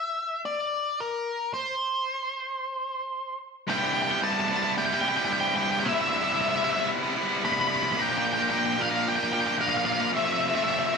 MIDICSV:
0, 0, Header, 1, 3, 480
1, 0, Start_track
1, 0, Key_signature, 0, "major"
1, 0, Tempo, 538600
1, 1351, Time_signature, 4, 2, 24, 8
1, 9781, End_track
2, 0, Start_track
2, 0, Title_t, "Lead electric guitar"
2, 0, Program_c, 0, 29
2, 0, Note_on_c, 0, 76, 68
2, 401, Note_off_c, 0, 76, 0
2, 404, Note_on_c, 0, 74, 81
2, 892, Note_off_c, 0, 74, 0
2, 894, Note_on_c, 0, 70, 70
2, 1366, Note_off_c, 0, 70, 0
2, 1370, Note_on_c, 0, 72, 63
2, 3010, Note_off_c, 0, 72, 0
2, 3296, Note_on_c, 0, 79, 92
2, 3366, Note_off_c, 0, 79, 0
2, 3370, Note_on_c, 0, 79, 68
2, 3438, Note_off_c, 0, 79, 0
2, 3441, Note_on_c, 0, 79, 86
2, 3501, Note_off_c, 0, 79, 0
2, 3505, Note_on_c, 0, 79, 67
2, 3578, Note_off_c, 0, 79, 0
2, 3584, Note_on_c, 0, 79, 77
2, 3657, Note_off_c, 0, 79, 0
2, 3665, Note_on_c, 0, 79, 62
2, 3738, Note_off_c, 0, 79, 0
2, 3775, Note_on_c, 0, 81, 120
2, 3848, Note_off_c, 0, 81, 0
2, 3860, Note_on_c, 0, 81, 92
2, 3921, Note_off_c, 0, 81, 0
2, 3925, Note_on_c, 0, 81, 100
2, 3993, Note_off_c, 0, 81, 0
2, 3996, Note_on_c, 0, 81, 87
2, 4066, Note_off_c, 0, 81, 0
2, 4069, Note_on_c, 0, 81, 101
2, 4123, Note_off_c, 0, 81, 0
2, 4127, Note_on_c, 0, 81, 84
2, 4199, Note_off_c, 0, 81, 0
2, 4259, Note_on_c, 0, 79, 119
2, 4324, Note_off_c, 0, 79, 0
2, 4328, Note_on_c, 0, 79, 88
2, 4397, Note_off_c, 0, 79, 0
2, 4401, Note_on_c, 0, 79, 108
2, 4463, Note_off_c, 0, 79, 0
2, 4467, Note_on_c, 0, 79, 95
2, 4525, Note_off_c, 0, 79, 0
2, 4528, Note_on_c, 0, 79, 102
2, 4598, Note_off_c, 0, 79, 0
2, 4605, Note_on_c, 0, 79, 96
2, 4675, Note_off_c, 0, 79, 0
2, 4682, Note_on_c, 0, 79, 103
2, 4742, Note_off_c, 0, 79, 0
2, 4746, Note_on_c, 0, 79, 92
2, 4815, Note_off_c, 0, 79, 0
2, 4818, Note_on_c, 0, 79, 109
2, 4877, Note_off_c, 0, 79, 0
2, 4880, Note_on_c, 0, 79, 99
2, 4950, Note_off_c, 0, 79, 0
2, 4955, Note_on_c, 0, 79, 109
2, 5015, Note_off_c, 0, 79, 0
2, 5018, Note_on_c, 0, 79, 92
2, 5088, Note_off_c, 0, 79, 0
2, 5097, Note_on_c, 0, 79, 96
2, 5162, Note_off_c, 0, 79, 0
2, 5165, Note_on_c, 0, 79, 83
2, 5219, Note_on_c, 0, 76, 85
2, 5235, Note_off_c, 0, 79, 0
2, 5286, Note_off_c, 0, 76, 0
2, 5290, Note_on_c, 0, 76, 57
2, 5353, Note_off_c, 0, 76, 0
2, 5357, Note_on_c, 0, 76, 72
2, 5425, Note_off_c, 0, 76, 0
2, 5429, Note_on_c, 0, 76, 62
2, 5495, Note_off_c, 0, 76, 0
2, 5499, Note_on_c, 0, 76, 77
2, 5555, Note_off_c, 0, 76, 0
2, 5559, Note_on_c, 0, 76, 63
2, 5629, Note_off_c, 0, 76, 0
2, 5642, Note_on_c, 0, 76, 71
2, 5712, Note_off_c, 0, 76, 0
2, 5715, Note_on_c, 0, 76, 67
2, 5780, Note_off_c, 0, 76, 0
2, 5784, Note_on_c, 0, 76, 73
2, 5840, Note_off_c, 0, 76, 0
2, 5844, Note_on_c, 0, 76, 60
2, 5914, Note_off_c, 0, 76, 0
2, 5920, Note_on_c, 0, 76, 70
2, 5982, Note_off_c, 0, 76, 0
2, 5986, Note_on_c, 0, 76, 59
2, 6052, Note_off_c, 0, 76, 0
2, 6056, Note_on_c, 0, 76, 62
2, 6126, Note_off_c, 0, 76, 0
2, 6640, Note_on_c, 0, 83, 125
2, 6702, Note_off_c, 0, 83, 0
2, 6706, Note_on_c, 0, 83, 95
2, 6775, Note_off_c, 0, 83, 0
2, 6780, Note_on_c, 0, 83, 104
2, 6838, Note_off_c, 0, 83, 0
2, 6842, Note_on_c, 0, 83, 100
2, 6911, Note_off_c, 0, 83, 0
2, 6919, Note_on_c, 0, 83, 113
2, 6974, Note_off_c, 0, 83, 0
2, 6978, Note_on_c, 0, 83, 93
2, 7047, Note_off_c, 0, 83, 0
2, 7060, Note_on_c, 0, 83, 94
2, 7129, Note_off_c, 0, 83, 0
2, 7143, Note_on_c, 0, 79, 101
2, 7210, Note_off_c, 0, 79, 0
2, 7214, Note_on_c, 0, 79, 69
2, 7284, Note_off_c, 0, 79, 0
2, 7287, Note_on_c, 0, 79, 83
2, 7350, Note_off_c, 0, 79, 0
2, 7354, Note_on_c, 0, 79, 74
2, 7424, Note_off_c, 0, 79, 0
2, 7428, Note_on_c, 0, 79, 89
2, 7500, Note_off_c, 0, 79, 0
2, 7505, Note_on_c, 0, 79, 78
2, 7571, Note_off_c, 0, 79, 0
2, 7574, Note_on_c, 0, 79, 96
2, 7646, Note_off_c, 0, 79, 0
2, 7651, Note_on_c, 0, 79, 72
2, 7713, Note_off_c, 0, 79, 0
2, 7717, Note_on_c, 0, 79, 82
2, 7778, Note_off_c, 0, 79, 0
2, 7781, Note_on_c, 0, 79, 72
2, 7853, Note_off_c, 0, 79, 0
2, 7854, Note_on_c, 0, 77, 98
2, 8084, Note_off_c, 0, 77, 0
2, 8096, Note_on_c, 0, 79, 126
2, 8158, Note_off_c, 0, 79, 0
2, 8162, Note_on_c, 0, 79, 96
2, 8228, Note_off_c, 0, 79, 0
2, 8231, Note_on_c, 0, 79, 112
2, 8303, Note_off_c, 0, 79, 0
2, 8313, Note_on_c, 0, 79, 100
2, 8376, Note_off_c, 0, 79, 0
2, 8380, Note_on_c, 0, 79, 114
2, 8436, Note_off_c, 0, 79, 0
2, 8439, Note_on_c, 0, 79, 84
2, 8511, Note_off_c, 0, 79, 0
2, 8564, Note_on_c, 0, 77, 101
2, 8631, Note_off_c, 0, 77, 0
2, 8635, Note_on_c, 0, 77, 74
2, 8703, Note_off_c, 0, 77, 0
2, 8707, Note_on_c, 0, 77, 91
2, 8776, Note_off_c, 0, 77, 0
2, 8780, Note_on_c, 0, 77, 79
2, 8840, Note_off_c, 0, 77, 0
2, 8844, Note_on_c, 0, 77, 86
2, 8916, Note_off_c, 0, 77, 0
2, 8925, Note_on_c, 0, 77, 68
2, 8998, Note_off_c, 0, 77, 0
2, 9060, Note_on_c, 0, 76, 77
2, 9129, Note_off_c, 0, 76, 0
2, 9137, Note_on_c, 0, 76, 54
2, 9199, Note_off_c, 0, 76, 0
2, 9203, Note_on_c, 0, 76, 65
2, 9271, Note_off_c, 0, 76, 0
2, 9274, Note_on_c, 0, 76, 56
2, 9326, Note_off_c, 0, 76, 0
2, 9329, Note_on_c, 0, 76, 72
2, 9399, Note_off_c, 0, 76, 0
2, 9403, Note_on_c, 0, 76, 60
2, 9472, Note_off_c, 0, 76, 0
2, 9480, Note_on_c, 0, 76, 74
2, 9536, Note_off_c, 0, 76, 0
2, 9539, Note_on_c, 0, 76, 67
2, 9609, Note_off_c, 0, 76, 0
2, 9613, Note_on_c, 0, 76, 70
2, 9678, Note_off_c, 0, 76, 0
2, 9682, Note_on_c, 0, 76, 66
2, 9749, Note_off_c, 0, 76, 0
2, 9753, Note_on_c, 0, 76, 72
2, 9781, Note_off_c, 0, 76, 0
2, 9781, End_track
3, 0, Start_track
3, 0, Title_t, "Overdriven electric guitar"
3, 0, Program_c, 1, 29
3, 3270, Note_on_c, 1, 36, 102
3, 3275, Note_on_c, 1, 43, 102
3, 3276, Note_on_c, 1, 48, 97
3, 3283, Note_on_c, 1, 55, 95
3, 3286, Note_on_c, 1, 59, 102
3, 3290, Note_on_c, 1, 64, 105
3, 3395, Note_off_c, 1, 64, 0
3, 3398, Note_on_c, 1, 64, 81
3, 3401, Note_off_c, 1, 59, 0
3, 3404, Note_on_c, 1, 59, 75
3, 3405, Note_off_c, 1, 55, 0
3, 3408, Note_on_c, 1, 55, 75
3, 3412, Note_off_c, 1, 48, 0
3, 3416, Note_on_c, 1, 48, 65
3, 3633, Note_off_c, 1, 64, 0
3, 3636, Note_off_c, 1, 43, 0
3, 3637, Note_on_c, 1, 64, 72
3, 3643, Note_off_c, 1, 59, 0
3, 3646, Note_off_c, 1, 55, 0
3, 3647, Note_on_c, 1, 59, 72
3, 3650, Note_on_c, 1, 55, 69
3, 3655, Note_off_c, 1, 48, 0
3, 3658, Note_on_c, 1, 48, 60
3, 3674, Note_off_c, 1, 36, 0
3, 3758, Note_on_c, 1, 36, 90
3, 3761, Note_on_c, 1, 43, 75
3, 3765, Note_off_c, 1, 48, 0
3, 3767, Note_off_c, 1, 55, 0
3, 3769, Note_on_c, 1, 48, 85
3, 3771, Note_off_c, 1, 59, 0
3, 3771, Note_on_c, 1, 55, 102
3, 3772, Note_off_c, 1, 64, 0
3, 3774, Note_on_c, 1, 59, 102
3, 3775, Note_on_c, 1, 64, 101
3, 3995, Note_off_c, 1, 48, 0
3, 3998, Note_on_c, 1, 48, 87
3, 4004, Note_off_c, 1, 55, 0
3, 4007, Note_on_c, 1, 55, 86
3, 4010, Note_off_c, 1, 59, 0
3, 4014, Note_on_c, 1, 59, 90
3, 4016, Note_off_c, 1, 64, 0
3, 4019, Note_on_c, 1, 64, 97
3, 4110, Note_off_c, 1, 64, 0
3, 4120, Note_off_c, 1, 59, 0
3, 4120, Note_on_c, 1, 64, 77
3, 4129, Note_off_c, 1, 48, 0
3, 4131, Note_on_c, 1, 59, 73
3, 4133, Note_off_c, 1, 55, 0
3, 4136, Note_on_c, 1, 55, 72
3, 4140, Note_on_c, 1, 48, 62
3, 4238, Note_off_c, 1, 43, 0
3, 4353, Note_off_c, 1, 64, 0
3, 4363, Note_off_c, 1, 59, 0
3, 4363, Note_on_c, 1, 64, 82
3, 4372, Note_off_c, 1, 48, 0
3, 4374, Note_off_c, 1, 55, 0
3, 4374, Note_on_c, 1, 59, 63
3, 4378, Note_on_c, 1, 55, 64
3, 4382, Note_on_c, 1, 48, 57
3, 4401, Note_off_c, 1, 36, 0
3, 4472, Note_off_c, 1, 48, 0
3, 4483, Note_on_c, 1, 48, 91
3, 4487, Note_off_c, 1, 55, 0
3, 4488, Note_off_c, 1, 59, 0
3, 4491, Note_on_c, 1, 55, 86
3, 4492, Note_off_c, 1, 64, 0
3, 4498, Note_on_c, 1, 59, 88
3, 4503, Note_on_c, 1, 64, 95
3, 4589, Note_off_c, 1, 64, 0
3, 4594, Note_off_c, 1, 59, 0
3, 4599, Note_on_c, 1, 64, 75
3, 4604, Note_off_c, 1, 48, 0
3, 4604, Note_on_c, 1, 59, 65
3, 4605, Note_off_c, 1, 55, 0
3, 4608, Note_on_c, 1, 55, 62
3, 4615, Note_on_c, 1, 48, 63
3, 4713, Note_on_c, 1, 36, 88
3, 4714, Note_off_c, 1, 48, 0
3, 4721, Note_off_c, 1, 59, 0
3, 4722, Note_on_c, 1, 43, 102
3, 4724, Note_off_c, 1, 64, 0
3, 4725, Note_off_c, 1, 55, 0
3, 4725, Note_on_c, 1, 48, 101
3, 4728, Note_on_c, 1, 55, 113
3, 4731, Note_on_c, 1, 59, 94
3, 4735, Note_on_c, 1, 64, 104
3, 4936, Note_off_c, 1, 48, 0
3, 4947, Note_on_c, 1, 48, 74
3, 4948, Note_off_c, 1, 55, 0
3, 4949, Note_off_c, 1, 59, 0
3, 4952, Note_on_c, 1, 55, 69
3, 4956, Note_off_c, 1, 64, 0
3, 4960, Note_on_c, 1, 59, 78
3, 4967, Note_on_c, 1, 64, 85
3, 5056, Note_off_c, 1, 64, 0
3, 5062, Note_off_c, 1, 59, 0
3, 5067, Note_on_c, 1, 64, 68
3, 5073, Note_on_c, 1, 59, 70
3, 5076, Note_off_c, 1, 48, 0
3, 5076, Note_off_c, 1, 55, 0
3, 5080, Note_on_c, 1, 55, 67
3, 5086, Note_on_c, 1, 48, 60
3, 5174, Note_off_c, 1, 36, 0
3, 5180, Note_off_c, 1, 43, 0
3, 5184, Note_off_c, 1, 48, 0
3, 5185, Note_on_c, 1, 36, 100
3, 5191, Note_on_c, 1, 43, 102
3, 5192, Note_off_c, 1, 59, 0
3, 5195, Note_off_c, 1, 55, 0
3, 5195, Note_on_c, 1, 48, 104
3, 5197, Note_off_c, 1, 64, 0
3, 5198, Note_on_c, 1, 55, 105
3, 5203, Note_on_c, 1, 59, 114
3, 5207, Note_on_c, 1, 64, 106
3, 5289, Note_off_c, 1, 64, 0
3, 5297, Note_off_c, 1, 59, 0
3, 5299, Note_on_c, 1, 64, 78
3, 5308, Note_off_c, 1, 48, 0
3, 5308, Note_on_c, 1, 59, 72
3, 5311, Note_off_c, 1, 55, 0
3, 5315, Note_on_c, 1, 55, 73
3, 5319, Note_on_c, 1, 48, 70
3, 5527, Note_off_c, 1, 64, 0
3, 5534, Note_off_c, 1, 59, 0
3, 5537, Note_on_c, 1, 64, 79
3, 5544, Note_off_c, 1, 48, 0
3, 5545, Note_off_c, 1, 55, 0
3, 5545, Note_on_c, 1, 59, 67
3, 5547, Note_off_c, 1, 36, 0
3, 5549, Note_on_c, 1, 55, 67
3, 5550, Note_off_c, 1, 43, 0
3, 5555, Note_on_c, 1, 48, 62
3, 5652, Note_off_c, 1, 48, 0
3, 5653, Note_on_c, 1, 36, 80
3, 5658, Note_off_c, 1, 59, 0
3, 5660, Note_on_c, 1, 43, 91
3, 5661, Note_off_c, 1, 55, 0
3, 5662, Note_off_c, 1, 64, 0
3, 5663, Note_on_c, 1, 48, 94
3, 5664, Note_on_c, 1, 55, 97
3, 5668, Note_on_c, 1, 59, 90
3, 5673, Note_on_c, 1, 64, 94
3, 5885, Note_off_c, 1, 48, 0
3, 5896, Note_on_c, 1, 48, 82
3, 5899, Note_off_c, 1, 59, 0
3, 5903, Note_off_c, 1, 55, 0
3, 5905, Note_off_c, 1, 64, 0
3, 5907, Note_on_c, 1, 55, 84
3, 5910, Note_on_c, 1, 59, 101
3, 5916, Note_on_c, 1, 64, 95
3, 6010, Note_off_c, 1, 64, 0
3, 6018, Note_off_c, 1, 59, 0
3, 6021, Note_on_c, 1, 64, 75
3, 6023, Note_off_c, 1, 55, 0
3, 6027, Note_off_c, 1, 48, 0
3, 6029, Note_on_c, 1, 59, 76
3, 6034, Note_on_c, 1, 55, 68
3, 6038, Note_on_c, 1, 48, 67
3, 6139, Note_off_c, 1, 36, 0
3, 6143, Note_off_c, 1, 43, 0
3, 6245, Note_off_c, 1, 64, 0
3, 6255, Note_off_c, 1, 59, 0
3, 6256, Note_on_c, 1, 64, 77
3, 6259, Note_off_c, 1, 55, 0
3, 6265, Note_off_c, 1, 48, 0
3, 6266, Note_on_c, 1, 59, 66
3, 6270, Note_on_c, 1, 55, 70
3, 6276, Note_on_c, 1, 48, 61
3, 6369, Note_off_c, 1, 48, 0
3, 6375, Note_off_c, 1, 55, 0
3, 6379, Note_on_c, 1, 48, 89
3, 6381, Note_off_c, 1, 59, 0
3, 6383, Note_off_c, 1, 64, 0
3, 6386, Note_on_c, 1, 55, 95
3, 6391, Note_on_c, 1, 59, 100
3, 6394, Note_on_c, 1, 64, 93
3, 6488, Note_off_c, 1, 64, 0
3, 6495, Note_off_c, 1, 59, 0
3, 6498, Note_off_c, 1, 55, 0
3, 6499, Note_on_c, 1, 64, 75
3, 6502, Note_off_c, 1, 48, 0
3, 6505, Note_on_c, 1, 59, 73
3, 6509, Note_on_c, 1, 55, 78
3, 6513, Note_on_c, 1, 48, 61
3, 6617, Note_on_c, 1, 36, 102
3, 6619, Note_off_c, 1, 48, 0
3, 6622, Note_off_c, 1, 55, 0
3, 6623, Note_off_c, 1, 59, 0
3, 6627, Note_on_c, 1, 43, 90
3, 6628, Note_off_c, 1, 64, 0
3, 6630, Note_on_c, 1, 48, 99
3, 6632, Note_on_c, 1, 55, 102
3, 6634, Note_on_c, 1, 59, 109
3, 6638, Note_on_c, 1, 64, 95
3, 6845, Note_off_c, 1, 48, 0
3, 6852, Note_off_c, 1, 55, 0
3, 6856, Note_on_c, 1, 48, 77
3, 6857, Note_off_c, 1, 59, 0
3, 6863, Note_on_c, 1, 55, 75
3, 6864, Note_off_c, 1, 64, 0
3, 6868, Note_on_c, 1, 59, 81
3, 6875, Note_on_c, 1, 64, 91
3, 6965, Note_off_c, 1, 64, 0
3, 6971, Note_off_c, 1, 59, 0
3, 6976, Note_on_c, 1, 64, 69
3, 6980, Note_off_c, 1, 48, 0
3, 6980, Note_off_c, 1, 55, 0
3, 6982, Note_on_c, 1, 59, 73
3, 6990, Note_on_c, 1, 48, 68
3, 6991, Note_on_c, 1, 55, 61
3, 7086, Note_off_c, 1, 36, 0
3, 7086, Note_off_c, 1, 64, 0
3, 7089, Note_off_c, 1, 59, 0
3, 7091, Note_off_c, 1, 43, 0
3, 7093, Note_off_c, 1, 48, 0
3, 7093, Note_off_c, 1, 55, 0
3, 7097, Note_on_c, 1, 46, 97
3, 7103, Note_on_c, 1, 53, 98
3, 7106, Note_on_c, 1, 58, 101
3, 7112, Note_on_c, 1, 62, 107
3, 7112, Note_on_c, 1, 65, 112
3, 7117, Note_on_c, 1, 70, 127
3, 7220, Note_off_c, 1, 70, 0
3, 7230, Note_on_c, 1, 70, 84
3, 7232, Note_off_c, 1, 62, 0
3, 7232, Note_off_c, 1, 65, 0
3, 7234, Note_off_c, 1, 58, 0
3, 7235, Note_on_c, 1, 65, 72
3, 7242, Note_on_c, 1, 62, 74
3, 7244, Note_on_c, 1, 58, 67
3, 7455, Note_off_c, 1, 70, 0
3, 7459, Note_off_c, 1, 46, 0
3, 7466, Note_off_c, 1, 62, 0
3, 7466, Note_on_c, 1, 70, 85
3, 7468, Note_off_c, 1, 65, 0
3, 7472, Note_off_c, 1, 58, 0
3, 7472, Note_on_c, 1, 65, 72
3, 7477, Note_on_c, 1, 62, 71
3, 7483, Note_on_c, 1, 58, 73
3, 7577, Note_off_c, 1, 58, 0
3, 7577, Note_on_c, 1, 46, 97
3, 7579, Note_off_c, 1, 62, 0
3, 7580, Note_off_c, 1, 53, 0
3, 7584, Note_on_c, 1, 53, 94
3, 7586, Note_off_c, 1, 70, 0
3, 7588, Note_on_c, 1, 58, 92
3, 7590, Note_on_c, 1, 62, 107
3, 7593, Note_off_c, 1, 65, 0
3, 7597, Note_on_c, 1, 65, 96
3, 7597, Note_on_c, 1, 70, 113
3, 7810, Note_off_c, 1, 58, 0
3, 7818, Note_off_c, 1, 62, 0
3, 7821, Note_on_c, 1, 58, 91
3, 7828, Note_on_c, 1, 62, 100
3, 7831, Note_off_c, 1, 70, 0
3, 7832, Note_off_c, 1, 65, 0
3, 7836, Note_on_c, 1, 65, 102
3, 7842, Note_on_c, 1, 70, 91
3, 7927, Note_off_c, 1, 70, 0
3, 7933, Note_off_c, 1, 65, 0
3, 7938, Note_off_c, 1, 62, 0
3, 7938, Note_on_c, 1, 70, 82
3, 7944, Note_on_c, 1, 65, 80
3, 7947, Note_off_c, 1, 58, 0
3, 7949, Note_on_c, 1, 62, 72
3, 7958, Note_on_c, 1, 58, 68
3, 8058, Note_off_c, 1, 46, 0
3, 8170, Note_off_c, 1, 70, 0
3, 8175, Note_off_c, 1, 65, 0
3, 8181, Note_on_c, 1, 70, 82
3, 8185, Note_on_c, 1, 65, 83
3, 8186, Note_off_c, 1, 62, 0
3, 8189, Note_off_c, 1, 58, 0
3, 8196, Note_on_c, 1, 62, 70
3, 8200, Note_on_c, 1, 58, 69
3, 8292, Note_off_c, 1, 58, 0
3, 8301, Note_off_c, 1, 62, 0
3, 8302, Note_on_c, 1, 58, 94
3, 8306, Note_off_c, 1, 65, 0
3, 8311, Note_off_c, 1, 70, 0
3, 8312, Note_on_c, 1, 62, 101
3, 8316, Note_on_c, 1, 65, 92
3, 8321, Note_on_c, 1, 70, 101
3, 8409, Note_off_c, 1, 70, 0
3, 8414, Note_off_c, 1, 65, 0
3, 8420, Note_off_c, 1, 62, 0
3, 8420, Note_on_c, 1, 70, 83
3, 8425, Note_on_c, 1, 65, 69
3, 8426, Note_off_c, 1, 58, 0
3, 8431, Note_on_c, 1, 62, 75
3, 8437, Note_on_c, 1, 58, 71
3, 8534, Note_off_c, 1, 53, 0
3, 8534, Note_off_c, 1, 62, 0
3, 8536, Note_off_c, 1, 58, 0
3, 8537, Note_on_c, 1, 46, 93
3, 8538, Note_on_c, 1, 53, 104
3, 8539, Note_off_c, 1, 65, 0
3, 8543, Note_off_c, 1, 70, 0
3, 8545, Note_on_c, 1, 62, 97
3, 8547, Note_on_c, 1, 58, 91
3, 8549, Note_on_c, 1, 65, 105
3, 8554, Note_on_c, 1, 70, 124
3, 8765, Note_off_c, 1, 58, 0
3, 8773, Note_off_c, 1, 62, 0
3, 8776, Note_on_c, 1, 58, 67
3, 8779, Note_off_c, 1, 65, 0
3, 8782, Note_off_c, 1, 70, 0
3, 8783, Note_on_c, 1, 62, 77
3, 8790, Note_on_c, 1, 65, 82
3, 8793, Note_on_c, 1, 70, 90
3, 8885, Note_off_c, 1, 70, 0
3, 8893, Note_off_c, 1, 65, 0
3, 8896, Note_off_c, 1, 62, 0
3, 8896, Note_on_c, 1, 70, 78
3, 8902, Note_off_c, 1, 58, 0
3, 8903, Note_on_c, 1, 65, 71
3, 8906, Note_on_c, 1, 62, 76
3, 8912, Note_on_c, 1, 58, 65
3, 9003, Note_off_c, 1, 70, 0
3, 9004, Note_off_c, 1, 46, 0
3, 9004, Note_off_c, 1, 53, 0
3, 9007, Note_off_c, 1, 65, 0
3, 9009, Note_off_c, 1, 62, 0
3, 9011, Note_on_c, 1, 41, 100
3, 9012, Note_off_c, 1, 58, 0
3, 9015, Note_on_c, 1, 48, 110
3, 9023, Note_on_c, 1, 53, 105
3, 9025, Note_on_c, 1, 57, 115
3, 9027, Note_on_c, 1, 60, 117
3, 9031, Note_on_c, 1, 65, 99
3, 9125, Note_off_c, 1, 65, 0
3, 9136, Note_on_c, 1, 65, 84
3, 9140, Note_off_c, 1, 57, 0
3, 9140, Note_off_c, 1, 60, 0
3, 9143, Note_off_c, 1, 53, 0
3, 9144, Note_on_c, 1, 60, 76
3, 9151, Note_on_c, 1, 57, 70
3, 9154, Note_on_c, 1, 53, 67
3, 9362, Note_off_c, 1, 65, 0
3, 9373, Note_on_c, 1, 65, 69
3, 9375, Note_off_c, 1, 57, 0
3, 9376, Note_off_c, 1, 41, 0
3, 9377, Note_off_c, 1, 48, 0
3, 9380, Note_off_c, 1, 60, 0
3, 9384, Note_off_c, 1, 53, 0
3, 9384, Note_on_c, 1, 60, 66
3, 9386, Note_on_c, 1, 57, 66
3, 9395, Note_on_c, 1, 53, 66
3, 9490, Note_off_c, 1, 53, 0
3, 9491, Note_on_c, 1, 41, 88
3, 9494, Note_off_c, 1, 57, 0
3, 9496, Note_on_c, 1, 48, 90
3, 9499, Note_off_c, 1, 65, 0
3, 9501, Note_on_c, 1, 53, 78
3, 9503, Note_off_c, 1, 60, 0
3, 9505, Note_on_c, 1, 57, 93
3, 9506, Note_on_c, 1, 60, 94
3, 9510, Note_on_c, 1, 65, 101
3, 9722, Note_off_c, 1, 53, 0
3, 9727, Note_off_c, 1, 57, 0
3, 9733, Note_on_c, 1, 53, 87
3, 9738, Note_on_c, 1, 57, 84
3, 9741, Note_off_c, 1, 60, 0
3, 9743, Note_off_c, 1, 65, 0
3, 9744, Note_on_c, 1, 60, 108
3, 9781, Note_off_c, 1, 41, 0
3, 9781, Note_off_c, 1, 48, 0
3, 9781, Note_off_c, 1, 53, 0
3, 9781, Note_off_c, 1, 57, 0
3, 9781, Note_off_c, 1, 60, 0
3, 9781, End_track
0, 0, End_of_file